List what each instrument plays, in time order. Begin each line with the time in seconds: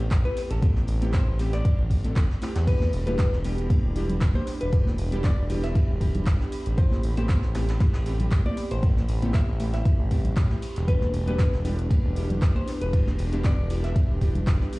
0.11 analog synth bass A1, kick, snare, clap, closed hi-hat, ride
0.25 synth stab A3 B3 C4 E4 G4, hollow-body jazz guitar B4
0.36 snare, open hi-hat
0.51 analog synth bass A1, hollow-body jazz guitar A4, closed hi-hat, ride
0.62 synth stab A3 B3 C4 E4 G4, kick, closed hi-hat, ride
0.76 snare
0.87 analog synth bass A1, open hi-hat, ride
1.02 synth stab A3 B3 C4 E4 G4, closed hi-hat
1.14 hollow-body jazz guitar C5, kick, snare, clap, closed hi-hat, ride
1.27 analog synth bass A1
1.39 synth stab A3 B3 C4 E4 G4, open hi-hat, ride
1.53 hollow-body jazz guitar D5, snare, closed hi-hat
1.65 synth stab A3 B3 C4 E4 G4, kick, closed hi-hat, ride
1.79 analog synth bass A1
1.91 kick, open hi-hat, ride
2.04 synth stab A3 B3 C4 E4 A4, closed hi-hat
2.16 analog synth bass G1, kick, snare, clap, closed hi-hat, ride
2.30 snare
2.41 synth stab A3 B3 C4 E4 G4, snare, open hi-hat, ride
2.55 analog synth bass E2, snare, closed hi-hat, ride
2.67 synth stab G3 B3 D4 E4 G4, analog synth pad D4 G4 B5, hollow-body jazz guitar B4, kick, closed hi-hat, ride, crash
2.81 snare, high conga
2.93 analog synth bass E1, open hi-hat, ride
3.07 synth stab G3 B3 D4 E4 G4, hollow-body jazz guitar B4, closed hi-hat, high conga
3.19 kick, snare, clap, closed hi-hat, ride
3.33 analog synth bass E1, snare
3.44 synth stab G3 B3 D4 E4 G4, open hi-hat, ride
3.58 closed hi-hat
3.70 synth stab G3 B3 D4 E4 G4, kick, closed hi-hat, ride, high conga
3.84 analog synth bass E1
3.95 synth stab G3 B3 D4 E4 G4, open hi-hat, ride
4.09 closed hi-hat, ride, low conga
4.21 analog synth bass E1, kick, snare, clap, closed hi-hat, ride
4.34 synth stab G3 B3 D4 E4 G4, hollow-body jazz guitar C5, high conga
4.47 snare, open hi-hat
4.61 analog synth bass E1, hollow-body jazz guitar B4, closed hi-hat, ride
4.72 synth stab G3 B3 D4 E4 G4, kick, closed hi-hat, ride
4.86 snare, high conga
4.98 analog synth bass E1, open hi-hat, ride
5.12 synth stab G3 B3 D4 E4 G4, closed hi-hat
5.24 hollow-body jazz guitar D5, kick, snare, clap, closed hi-hat, ride
5.38 analog synth bass E1
5.49 synth stab G3 B3 D4 E4 G4, open hi-hat, ride
5.64 hollow-body jazz guitar E5, snare, closed hi-hat
5.75 synth stab G3 B3 D4 E4 G4, kick, closed hi-hat, ride
5.89 analog synth bass E1
6.01 synth stab G3 B3 D4 E4 G4, kick, open hi-hat, ride
6.15 closed hi-hat, low conga
6.26 analog synth bass E1, kick, snare, clap, closed hi-hat, ride
6.40 synth stab G3 B3 D4 E4 G4, snare
6.52 open hi-hat, ride
6.66 analog synth bass A1, closed hi-hat
6.78 synth stab A3 B3 C4 E4 G4, hollow-body jazz guitar C5, kick, closed hi-hat, ride
6.91 snare, high conga
7.03 analog synth bass A1, open hi-hat, ride
7.17 synth stab A3 B3 C4 E4 G4, hollow-body jazz guitar C5, closed hi-hat, high conga
7.29 kick, snare, clap, closed hi-hat, ride
7.42 analog synth bass A1, snare
7.54 synth stab A3 B3 C4 E4 G4, snare, open hi-hat, ride
7.68 snare, closed hi-hat, ride
7.80 synth stab A3 B3 C4 E4 G4, kick, snare, closed hi-hat, ride, high conga
7.93 analog synth bass A1, snare, ride
8.06 synth stab A3 B3 C4 E4 G4, open hi-hat, ride
8.20 closed hi-hat, ride, low conga
8.32 analog synth bass A1, kick, snare, clap, closed hi-hat, ride
8.45 synth stab A3 B3 C4 E4 G4, hollow-body jazz guitar D5, high conga
8.57 snare, open hi-hat
8.71 analog synth bass A1, hollow-body jazz guitar C5, closed hi-hat, ride
8.83 synth stab A3 B3 C4 E4 G4, kick, closed hi-hat, ride
8.97 snare, high conga
9.09 analog synth bass A1, open hi-hat, ride
9.22 synth stab A3 B3 C4 E4 G4, closed hi-hat, high conga
9.34 hollow-body jazz guitar E5, kick, snare, clap, closed hi-hat, ride
9.48 analog synth bass A1
9.59 synth stab A3 B3 C4 E4 G4, open hi-hat, ride
9.74 hollow-body jazz guitar E5, snare, closed hi-hat
9.85 synth stab A3 B3 C4 E4 G4, kick, closed hi-hat, ride
9.99 analog synth bass A1
10.11 synth stab A3 B3 C4 E4 G4, kick, open hi-hat, ride
10.25 closed hi-hat, low conga
10.36 analog synth bass A2, kick, snare, clap, closed hi-hat, ride
10.50 synth stab A3 B3 C4 E4 G4, snare
10.62 open hi-hat, ride
10.76 analog synth bass E1, snare, closed hi-hat
10.88 synth stab G3 B3 D4 E4 G4, analog synth pad D4 G4 B4, hollow-body jazz guitar B4, kick, closed hi-hat, ride
11.01 snare, high conga
11.14 analog synth bass E1, open hi-hat, ride
11.27 synth stab G3 B3 D4 E4 G4, hollow-body jazz guitar B4, closed hi-hat, high conga
11.39 kick, snare, clap, closed hi-hat, ride
11.53 analog synth bass E1, snare
11.65 synth stab G3 B3 D4 E4 G4, open hi-hat, ride
11.79 closed hi-hat
11.90 synth stab G3 B3 D4 E4 G4, kick, closed hi-hat, ride, high conga
12.04 analog synth bass E1
12.16 synth stab G3 B3 D4 E4 G4, open hi-hat, ride
12.30 closed hi-hat, ride, low conga
12.42 analog synth bass E1, kick, snare, clap, closed hi-hat, ride
12.55 synth stab G3 B3 D4 E4 G4, hollow-body jazz guitar C5, high conga
12.68 snare, open hi-hat
12.81 analog synth bass E1, hollow-body jazz guitar B4, closed hi-hat, ride
12.93 synth stab G3 B3 D4 E4 G4, kick, closed hi-hat, ride
13.07 snare, high conga
13.18 analog synth bass E1, open hi-hat, ride
13.32 synth stab G3 B3 D4 E4 G4, closed hi-hat
13.44 hollow-body jazz guitar D5, kick, snare, clap, closed hi-hat, ride
13.58 analog synth bass E1
13.70 synth stab G3 B3 D4 E4 G4, open hi-hat, ride
13.84 hollow-body jazz guitar E5, snare, closed hi-hat
13.95 synth stab G3 B3 D4 E4 G4, kick, closed hi-hat, ride
14.09 analog synth bass E1
14.21 synth stab G3 B3 D4 E4 G4, kick, open hi-hat, ride
14.35 closed hi-hat, low conga
14.47 analog synth bass E1, kick, snare, clap, closed hi-hat, ride
14.60 synth stab G3 B3 D4 E4 G4, snare
14.72 open hi-hat, ride